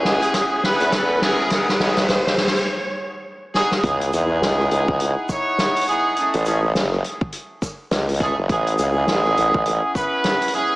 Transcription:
Already playing: horn section B3 C#4 E4 G#4, riser
0.05 wobble bass C#2, snare
0.22 closed hi-hat
0.34 kick, snare, closed hi-hat
0.63 horn section B3 C#4 E4 B4, snare
0.80 wobble bass E2, closed hi-hat
0.92 kick, snare, closed hi-hat
1.22 horn section B3 C#4 E4 G#4, snare
1.50 horn section B3 D#4 F#4 G#4, kick, snare, closed hi-hat
1.69 snare
1.80 wobble bass B1, horn section B3 D#4 F#4 G#4, snare
1.97 snare, closed hi-hat
2.09 wobble bass D#2, kick, snare, closed hi-hat
2.27 snare
2.37 snare
2.47 snare
2.56 closed hi-hat
3.54 horn section B3 D#4 F#4 G#4, snare
3.71 snare
3.84 wobble bass C#2, horn section B3 D#4 E4 G#4, kick, closed hi-hat, sub drop
4.01 closed hi-hat
4.13 wobble bass E2, horn section B3 D#4 E4 G#4, closed hi-hat, shaker
4.42 wobble bass C#2, snare, closed hi-hat
4.60 cross-stick
4.71 wobble bass C#2, closed hi-hat
4.88 wobble bass C#2, kick
5.00 closed hi-hat
5.29 horn section B3 D#4 E4 C#5, kick, cross-stick, shaker
5.58 snare, closed hi-hat
5.76 closed hi-hat
5.81 closed hi-hat
5.87 horn section B3 D#4 E4 G#4, closed hi-hat
6.17 horn section A3 C#4 E4 G#4, closed hi-hat
6.34 wobble bass A1, closed hi-hat
6.46 horn section A3 C#4 E4 G#4, closed hi-hat, shaker
6.75 wobble bass F#1, snare, closed hi-hat
6.93 cross-stick
7.04 closed hi-hat
7.21 kick
7.32 closed hi-hat
7.62 kick, cross-stick, shaker
7.91 wobble bass C#2, snare, closed hi-hat
8.09 closed hi-hat
8.14 closed hi-hat
8.20 horn section A3 C#4 E4 G#4, kick, cross-stick, closed hi-hat
8.38 wobble bass F#1
8.49 wobble bass A1, horn section B3 C#4 E4 G#4, kick, closed hi-hat
8.67 closed hi-hat
8.79 wobble bass C#2, horn section B3 C#4 E4 G#4, closed hi-hat, shaker
9.07 wobble bass A1, snare, closed hi-hat
9.25 cross-stick
9.37 wobble bass A1, closed hi-hat
9.54 wobble bass A1, kick
9.66 closed hi-hat
9.95 horn section B3 C#4 E4 B4, kick, cross-stick, shaker
10.24 snare, closed hi-hat
10.42 closed hi-hat
10.48 closed hi-hat
10.53 horn section B3 C#4 E4 G#4, closed hi-hat

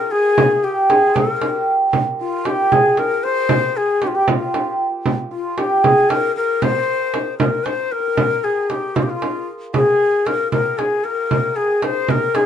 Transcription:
Already playing: santur D#4 F4 G#4 A#4, ney A#4
0.11 ney G#4, santur G#4
0.38 santur G#4, frame drum
0.64 santur G4, ney G4
0.89 santur G#4, ney G#4, frame drum
1.09 santur C5
1.16 santur A#4, ney A#4, frame drum
1.42 frame drum
1.49 santur G4
1.93 frame drum
2.21 ney F4, santur F4
2.45 santur G4, ney G4, frame drum
2.72 santur G#4, ney G#4, frame drum
2.97 santur A#4, ney A#4, frame drum
3.24 ney C5, santur C5
3.49 frame drum
3.77 ney G#4, santur G#4
4.02 ney G4, santur G4, frame drum
4.07 ney F4
4.15 ney G4, santur G4
4.28 ney F4, santur F4, frame drum
4.54 frame drum
4.61 santur G4
5.06 frame drum
5.31 santur F4, ney F4
5.58 ney G4, santur G4, frame drum
5.84 ney G#4, santur G#4, frame drum
6.10 ney A#4, frame drum
6.36 santur A#4, ney A#4
6.62 santur C5, ney C5, frame drum
7.14 frame drum
7.39 ney A#4, santur A#4, frame drum
7.65 ney C5, frame drum
7.92 ney A#4, santur A#4
8.00 santur A#4
8.08 santur A#4
8.15 santur A#4, frame drum
8.23 santur A#4
8.30 santur A#4
8.44 ney G#4, santur G#4
8.70 ney G4, frame drum
8.96 ney F4, santur F4, frame drum
9.03 ney G4
9.10 ney F4, santur F4
9.22 frame drum
9.73 santur G#4, ney G#4, frame drum
10.27 ney A#4, frame drum
10.52 santur A#4, ney A#4, frame drum
10.78 ney G#4, frame drum
11.04 ney A#4, santur A#4
11.31 santur A#4, frame drum
11.56 ney G#4, santur G#4
11.82 ney C5, frame drum
12.08 santur A#4, ney A#4, frame drum
12.35 santur G#4, ney G#4, frame drum

